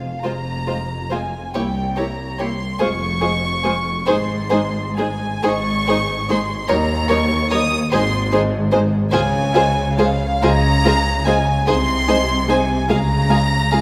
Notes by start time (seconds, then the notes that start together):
Already playing: F5
0.23 F1 F2 G#3 F4 C5 A#5
0.67 G#3 F4 C5
1.11 G#3 F4 C5 G#5
1.53 C2 A#3 E4 G4 C#5 G5
1.96 A#3 E4 G4 C#5 A#5
2.39 A#3 E4 G4 C#5 C6
2.79 F1 F2 G#3 F4 G#4 C5 C#6
3.21 G#3 F4 G#4 C5
3.64 G#3 F4 G#4 C5
4.07 G#1 G#2 G#3 D#4 G#4 C5 C6
4.50 G#3 D#4 G#4 C5
4.98 G#3 D#4 G#4 C5 G#5
5.43 G#1 G#2 G#3 D#4 G#4 C5 C#6
5.87 G#3 D#4 G#4 C5
6.29 G#3 D#4 G#4 C5 C6
6.68 D#2 G3 D#4 A#4 C#5 A#5
7.09 G3 D#4 A#4 C#5 C#6
7.51 G3 D#4 A#4 C#5 D#6
7.92 G#1 G#2 G#3 D#4 G#4 C5 C6
8.32 G#3 D#4 G#4 C5
8.72 G#3 D#4 G#4 C5
9.11 C#2 C#3 G#3 F4 G#4 C5 G#5
9.53 G#3 F4 G#4 C5
9.98 G#3 F4 G#4 C5 F5
10.42 C#2 C#3 G#3 F4 G#4 C5 A#5
10.85 G#3 F4 G#4 C5
11.26 G#3 F4 G#4 C5 G#5
11.66 C2 C3 G#3 D#4 G#4 C5 C6
12.07 G#3 D#4 G#4 C5
12.47 G#3 D#4 G#4 C5 G#5
12.88 C#2 C#3 G#3 F4 G#4 F5 A#5
13.29 G#3 F4 G#4 F5
13.72 G#3 F4 G#4 F5